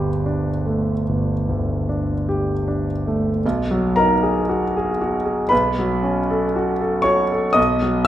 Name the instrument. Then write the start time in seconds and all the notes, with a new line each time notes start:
grand piano
Already playing: G1 D2 D4 G4 B4
0.26 D4
0.67 A3
1.09 G1
1.49 D2
1.89 D4
2.29 G4
2.68 D4
3.07 A3
3.46 B1
3.71 F#3
3.96 D#4 A#4 A#5
4.23 G#4
4.49 F#4
4.76 G#4
5.01 F#4
5.25 G#4
5.49 B1 B4 B5
5.79 F#3
6.03 C#4
6.30 A4
6.56 F#4
6.81 A4
7.02 F#4 C#5 C#6
7.32 A4
7.53 B1 D#5 D#6
7.82 F#3